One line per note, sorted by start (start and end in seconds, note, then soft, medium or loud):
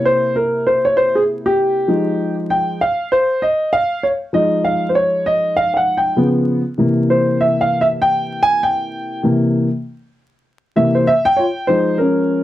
0.00 1.85 C3 medium
0.00 1.85 A#3 medium
0.00 1.85 E4 medium
0.05 0.34 C5 medium
0.36 0.67 A#4 medium
0.67 0.84 C5 medium
0.85 0.98 C#5 medium
0.97 1.16 C5 medium
1.15 1.22 G#4 medium
1.46 2.34 G4 medium
1.88 2.76 F3 medium
1.88 2.77 G#3 medium
1.88 2.77 D#4 medium
2.50 2.82 G5 medium
2.81 3.13 F5 medium
3.12 3.43 C5 loud
3.42 3.74 D#5 medium
3.73 4.04 F5 loud
4.03 4.10 C#5 medium
4.33 6.13 F3 medium
4.33 6.13 G#3 medium
4.33 6.14 D#4 medium
4.33 4.62 D#5 medium
4.64 4.88 F5 medium
4.89 4.95 C5 medium
4.95 5.27 C#5 medium
5.26 5.57 D#5 medium
5.57 5.72 F5 loud
5.74 5.76 F5 medium
5.74 5.98 F#5 medium
5.97 6.26 G5 medium
6.16 6.60 C#3 medium
6.16 6.60 F3 medium
6.16 6.60 B3 medium
6.78 9.19 C3 medium
6.78 9.19 E3 medium
6.78 9.20 A#3 medium
7.10 7.41 C5 medium
7.41 7.61 E5 medium
7.61 7.82 F5 medium
7.81 7.86 E5 medium
8.02 8.43 G5 loud
8.43 8.63 G#5 loud
8.63 9.20 G5 loud
9.23 9.66 C3 medium
9.23 9.67 E3 medium
9.23 9.67 A#3 medium
10.76 11.04 C3 medium
10.76 11.04 E3 soft
10.76 11.04 A#3 medium
10.76 10.95 E5 medium
10.95 11.08 C5 medium
11.07 11.26 E5 loud
11.25 11.65 G5 loud
11.37 11.46 F4 medium
11.37 11.44 C#5 medium
11.67 12.44 F3 medium
11.67 12.44 G#3 medium
11.67 11.98 D#4 medium
11.67 11.96 C5 medium
11.98 12.44 C#4 medium
11.98 12.44 A#4 medium